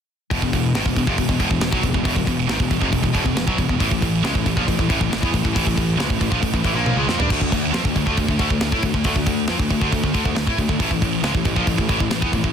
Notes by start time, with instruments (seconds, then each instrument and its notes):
0.31 picked electric bass E1, distorted electric guitar E2 B2, kick, open hi-hat
0.42 picked electric bass E1, distorted electric guitar E2 B2, kick
0.53 picked electric bass E1, distorted electric guitar E2 B2, kick, open hi-hat
0.75 picked electric bass G#1, distorted electric guitar G#2 D#3, snare, open hi-hat
0.85 picked electric bass E1, distorted electric guitar E2 B2, kick
0.96 picked electric bass E1, distorted electric guitar E2 B2, kick, open hi-hat
1.07 picked electric bass F1, distorted electric guitar F2 C3, kick
1.18 picked electric bass E1, distorted electric guitar E2 B2, kick, open hi-hat
1.29 picked electric bass E1, distorted electric guitar E2 B2, kick
1.39 picked electric bass E1, distorted electric guitar E2 B2, kick, open hi-hat
1.49 picked electric bass E1, distorted electric guitar E2 B2, kick
1.60 picked electric bass E1, distorted electric guitar E2 B2, snare, open hi-hat
1.71 picked electric bass B1, distorted electric guitar B2 F#3, kick
1.82 picked electric bass E1, distorted electric guitar E2 B2, kick, open hi-hat
1.92 picked electric bass E1, distorted electric guitar E2 B2, kick
2.04 picked electric bass E1, distorted electric guitar E2 B2, kick, open hi-hat
2.15 picked electric bass E1, distorted electric guitar E2 B2, kick
2.25 picked electric bass E1, distorted electric guitar E2 B2, kick, open hi-hat
2.48 picked electric bass G#1, distorted electric guitar G#2 D#3, snare, open hi-hat
2.59 picked electric bass E1, distorted electric guitar E2 B2, kick
2.70 picked electric bass E1, distorted electric guitar E2 B2, kick, open hi-hat
2.81 picked electric bass F1, distorted electric guitar F2 C3, kick
2.91 picked electric bass E1, distorted electric guitar E2 B2, kick, open hi-hat
3.02 picked electric bass E1, distorted electric guitar E2 B2, kick
3.13 picked electric bass E1, distorted electric guitar E2 B2, kick, open hi-hat
3.25 picked electric bass E1, distorted electric guitar E2 B2, kick
3.36 picked electric bass E1, distorted electric guitar E2 B2, snare, open hi-hat
3.47 picked electric bass B1, distorted electric guitar B2 F#3, kick
3.58 picked electric bass E1, distorted electric guitar E2 B2, kick, open hi-hat
3.68 picked electric bass E1, distorted electric guitar E2 B2, kick
3.79 picked electric bass A1, distorted electric guitar A2 E3, kick, open hi-hat
3.90 picked electric bass A1, distorted electric guitar A2 E3, kick
4.01 picked electric bass A1, distorted electric guitar A2 E3, kick, open hi-hat
4.24 picked electric bass C#2, distorted electric guitar C#3 G#3, snare, open hi-hat
4.35 picked electric bass A1, distorted electric guitar A2 E3, kick
4.46 picked electric bass A1, distorted electric guitar A2 E3, kick, open hi-hat
4.57 picked electric bass A#1, distorted electric guitar A#2 F3, kick
4.67 picked electric bass A1, distorted electric guitar A2 E3, kick, open hi-hat
4.78 picked electric bass A1, distorted electric guitar A2 E3, kick
4.89 picked electric bass A1, distorted electric guitar A2 E3, kick, open hi-hat
5.00 picked electric bass A1, distorted electric guitar A2 E3, kick
5.10 picked electric bass A1, distorted electric guitar A2 E3, snare, open hi-hat
5.21 picked electric bass E2, distorted electric guitar E3 B3, kick
5.32 picked electric bass A1, distorted electric guitar A2 E3, kick, open hi-hat
5.36 distorted electric guitar A2
5.43 picked electric bass A1, distorted electric guitar A2 E3, kick
5.53 picked electric bass A1, distorted electric guitar A2 E3, kick, open hi-hat
5.65 picked electric bass A1, distorted electric guitar A2 E3, kick
5.75 picked electric bass A1, distorted electric guitar A2 E3, kick, open hi-hat
5.97 picked electric bass C#2, distorted electric guitar C#3 G#3, snare, open hi-hat
6.08 picked electric bass A1, distorted electric guitar A2 E3, kick
6.19 picked electric bass A1, distorted electric guitar A2 E3, kick, open hi-hat
6.30 picked electric bass A#1, distorted electric guitar A#2 F3, kick
6.41 picked electric bass A1, distorted electric guitar A2 E3, kick, open hi-hat
6.52 picked electric bass A1, distorted electric guitar A2 E3, kick
6.63 picked electric bass A1, distorted electric guitar A2 E3, kick, open hi-hat
6.74 picked electric bass A#1, distorted electric guitar A#2 F3 A#3
6.86 high tom
6.96 picked electric bass C#2, distorted electric guitar C#3 G#3
7.08 picked electric bass F2, distorted electric guitar F3 C4, snare
7.19 picked electric bass G2, distorted electric guitar G3 D4, floor tom
7.29 picked electric bass D2, distorted electric guitar D3 A3, kick, crash, splash
7.40 picked electric bass D2, distorted electric guitar D3 A3, kick
7.51 picked electric bass D2, distorted electric guitar D3 A3, kick, open hi-hat
7.72 picked electric bass F2, distorted electric guitar F3 C4, snare, open hi-hat
7.83 picked electric bass D2, distorted electric guitar D3 A3, kick
7.95 picked electric bass D2, distorted electric guitar D3 A3, kick, open hi-hat
8.06 picked electric bass D2, distorted electric guitar D3 A3, kick
8.17 picked electric bass D2, distorted electric guitar D3 A3, kick, open hi-hat
8.28 picked electric bass D2, distorted electric guitar D3 A3, kick
8.38 picked electric bass D2, distorted electric guitar D3 A3, kick, open hi-hat
8.50 picked electric bass D2, distorted electric guitar D3 A3, kick
8.61 picked electric bass D2, distorted electric guitar D3 A3, snare, open hi-hat
8.72 picked electric bass A2, distorted electric guitar A3 E4, kick
8.83 picked electric bass D2, distorted electric guitar D3 A3, kick, open hi-hat
8.94 picked electric bass D2, distorted electric guitar D3 A3, kick
9.04 picked electric bass D2, distorted electric guitar D3 A3, kick, open hi-hat
9.16 picked electric bass D2, distorted electric guitar D3 A3, kick
9.26 picked electric bass D2, distorted electric guitar D3 A3, kick, open hi-hat
9.48 picked electric bass F2, distorted electric guitar F3 C4, snare, open hi-hat
9.59 picked electric bass D2, distorted electric guitar D3 A3, kick
9.70 picked electric bass D2, distorted electric guitar D3 A3, kick, open hi-hat
9.80 picked electric bass D2, distorted electric guitar D3 A3, kick
9.92 picked electric bass D2, distorted electric guitar D3 A3, kick, open hi-hat
10.03 picked electric bass D2, distorted electric guitar D3 A3, kick
10.13 picked electric bass D2, distorted electric guitar D3 A3, kick, open hi-hat
10.25 picked electric bass D2, distorted electric guitar D3 A3, kick
10.35 picked electric bass D2, distorted electric guitar D3 A3, snare, open hi-hat
10.47 picked electric bass A2, distorted electric guitar A3 E4, kick
10.58 picked electric bass D2, distorted electric guitar D3 A3, kick, open hi-hat
10.69 picked electric bass D2, distorted electric guitar D3 A3, kick
10.80 picked electric bass A1, distorted electric guitar A2 E3, kick, open hi-hat
10.91 picked electric bass A1, distorted electric guitar A2 E3, kick
11.02 picked electric bass A1, distorted electric guitar A2 E3, kick, open hi-hat
11.23 picked electric bass C#2, distorted electric guitar C#3 G#3, snare, open hi-hat
11.34 picked electric bass A1, distorted electric guitar A2 E3, kick
11.44 picked electric bass A1, distorted electric guitar A2 E3, kick, open hi-hat
11.56 picked electric bass A#1, distorted electric guitar A#2 F3, kick
11.67 picked electric bass A1, distorted electric guitar A2 E3, kick, open hi-hat
11.78 picked electric bass A1, distorted electric guitar A2 E3, kick
11.88 picked electric bass A1, distorted electric guitar A2 E3, kick, open hi-hat
11.99 picked electric bass A1, distorted electric guitar A2 E3, kick
12.10 picked electric bass A1, distorted electric guitar A2 E3, snare, open hi-hat
12.21 picked electric bass E2, distorted electric guitar E3 B3, kick
12.33 picked electric bass A1, distorted electric guitar A2 E3, kick, open hi-hat
12.44 picked electric bass A1, distorted electric guitar A2 E3, kick